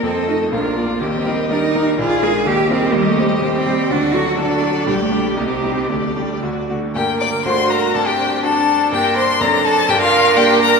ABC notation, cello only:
X:1
M:2/4
L:1/16
Q:1/4=123
K:Eblyd
V:1 name="Cello"
C2 E2 D4 | B, C3 D E3 | F2 _A2 G2 C2 | [K:Gm] G, A,3 B, C3 |
D2 ^F2 D4 | G, A,3 B, C3 | A,4 z4 | z4 D4 |
C4 D4 | B4 A4 | B8 |]